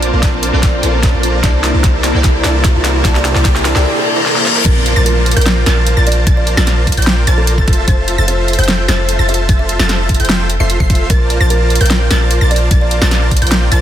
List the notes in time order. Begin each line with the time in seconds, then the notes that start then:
Already playing: A#1 A#3 C4 D4 F4 A4 A#4 C5 D5 A5, riser
0.03 closed hi-hat
0.13 A#1 F4 A#4 C5 D5 A5
0.23 kick, snare, closed hi-hat
0.43 closed hi-hat
0.52 A#1 C4 F4 A4 A#4 C5 D5 G5
0.63 kick, snare, closed hi-hat
0.81 A#1 C4 F4 A4 A#4 C5 D5 A5, closed hi-hat
1.03 kick, snare, closed hi-hat
1.14 A#1 F4 A#4 C5 D5 A5
1.23 closed hi-hat
1.42 C2 C3 A#3 D4 E4 G4 A#4 C5 D5 A5, kick, snare, closed hi-hat
1.46 D5
1.64 snare, closed hi-hat
1.74 C2 E4 A#4 C5 D5 A5
1.84 kick, snare, closed hi-hat
2.04 snare, closed hi-hat
2.12 C2 A#3 E4 G4 A4 A#4 C5 D5 G5
2.24 kick, snare, closed hi-hat
2.44 C2 E4 A#4 C5 D5 A5, snare, closed hi-hat
2.64 kick, snare, closed hi-hat
2.75 C2 E4 A#4 C5 D5 A5
2.84 snare, closed hi-hat
3.03 A#3 E4 G4 A5, kick, snare, closed hi-hat
3.07 D5
3.15 snare
3.25 snare, closed hi-hat
3.35 C2 E4 A#4 C5 D5 A5, snare
3.45 kick, snare, closed hi-hat
3.55 snare
3.65 snare, closed hi-hat
3.74 C2 A#3 E4 G4 A4 A#4 C5 D5 G5, snare
3.85 reverse cymbal
4.16 E4 A#4 C5 D5 A#5
4.26 snare
4.36 E4 A#4 C5 D5 A#5, snare
4.46 snare
4.56 snare
4.66 A#1 A#4 D5 A5 A6, kick, closed hi-hat, crash, downlifter
4.86 closed hi-hat
4.96 A#1 F4 A#4 C5 D5 A5 A6
5.06 A#4, closed hi-hat
5.26 closed hi-hat
5.31 closed hi-hat
5.36 A#1 F4 A#4 C5 D5 G5 G6, closed hi-hat
5.41 closed hi-hat
5.46 snare, closed hi-hat
5.66 A#1 F4 A#4 C5 D5 A5 A6, snare, closed hi-hat
5.87 closed hi-hat
5.97 A#1 F4 A#4 C5 D5 A5 A6
6.07 D5, closed hi-hat
6.12 closed hi-hat
6.27 A#1 F4 A#4 C5 D5 A5 A6, kick, closed hi-hat
6.37 D5
6.47 closed hi-hat
6.57 A#1 F4 A#4 A5 A6, snare
6.67 snare, closed hi-hat
6.87 kick, closed hi-hat
6.92 closed hi-hat
6.97 A#1 F4 A#4 C5 D5 G5 G6, closed hi-hat
7.02 closed hi-hat
7.07 snare, closed hi-hat
7.27 A#1 F4 A#4 C5 D5 A5 A6, closed hi-hat
7.38 A4
7.47 closed hi-hat
7.58 F1 A4 C5 E5 A5 A6, kick
7.68 kick, closed hi-hat
7.73 closed hi-hat
7.88 F1 F4 A4 C5 A5 A6, kick, closed hi-hat
8.08 closed hi-hat
8.18 F1 F4 A4 C5 E5 A5 A6
8.28 C5, closed hi-hat
8.48 closed hi-hat
8.53 closed hi-hat
8.58 F1 F4 A4 C5 E5 G5 G6, closed hi-hat
8.64 closed hi-hat
8.68 snare, closed hi-hat
8.88 F1 F4 A4 C5 E5 A5 A6, snare, closed hi-hat
9.09 closed hi-hat
9.19 F1 F4 A4 C5 E5 A5 A6
9.29 E5, closed hi-hat
9.34 closed hi-hat
9.49 F1 F4 A4 C5 E5 A5 A6, kick, closed hi-hat
9.59 E5
9.69 closed hi-hat
9.79 F1 F4 A4 C5 E5 A5 A6, snare
9.89 snare, closed hi-hat
10.09 kick, closed hi-hat
10.14 closed hi-hat
10.20 F1 F4 A4 C5 E5 G5 G6, closed hi-hat
10.25 closed hi-hat
10.29 snare, closed hi-hat
10.50 closed hi-hat
10.60 F1 F4 A4 C5 E5 C6 C7
10.70 closed hi-hat
10.80 F1 C7, kick
10.90 kick, closed hi-hat
10.95 closed hi-hat
11.10 A#1 F4 A#4 C5 D5 A5 A6, kick, closed hi-hat
11.30 closed hi-hat
11.40 A#1 F4 A#4 C5 D5 A5 A6
11.50 A#4, closed hi-hat
11.70 closed hi-hat
11.75 closed hi-hat
11.81 A#1 F4 A#4 C5 D5 G5 G6, closed hi-hat
11.86 closed hi-hat
11.90 snare, closed hi-hat
12.11 A#1 F4 A#4 C5 D5 A5 A6, snare, closed hi-hat
12.31 closed hi-hat
12.41 A#1 F4 A#4 C5 D5 A5 A6
12.51 D5, closed hi-hat
12.56 closed hi-hat
12.71 A#1 F4 A#4 C5 A6, kick, closed hi-hat
12.81 D5
12.91 closed hi-hat
13.01 A#1 F4 A#4 C5 D5 A5 A6, snare
13.11 snare, closed hi-hat
13.31 kick, closed hi-hat
13.37 closed hi-hat
13.42 A#1 F4 A#4 C5 D5 G5 G6, closed hi-hat
13.47 closed hi-hat
13.52 snare, closed hi-hat
13.71 A#1 F4 A#4 C5 D5 A5 A6, closed hi-hat